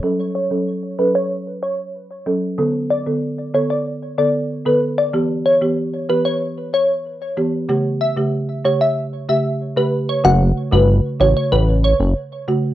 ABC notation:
X:1
M:4/4
L:1/16
Q:1/4=94
K:F#phr
V:1 name="Synth pluck"
z2 c z3 B c z2 c z4 z | z2 d z3 c d z2 d z2 B z d | z2 c z3 B c z2 c z4 z | z2 e z3 c e z2 e z2 B z c |
f z2 B z2 c c B z c z4 z |]
V:2 name="Marimba"
[F,CA]3 [F,CA]3 [F,CA]2 z6 [F,CA]2 | [D,B,A]3 [D,B,A]3 [D,B,A]2 z2 [D,B,A] z2 [D,B,A] z2 | [E,B,G]3 [E,B,G]3 [E,B,G]2 z6 [E,B,G]2 | [C,A,G]3 [C,A,G]3 [C,A,G]2 z2 [C,A,G] z2 [C,A,G] z2 |
[C,A,F]3 [C,A,F]3 [C,A,F]2 z6 [C,A,F]2 |]
V:3 name="Analog synth bass" clef=bass
z16 | z16 | z16 | z16 |
F,,,2 z G,,,2 z A,,, z A,,,3 F,,, z4 |]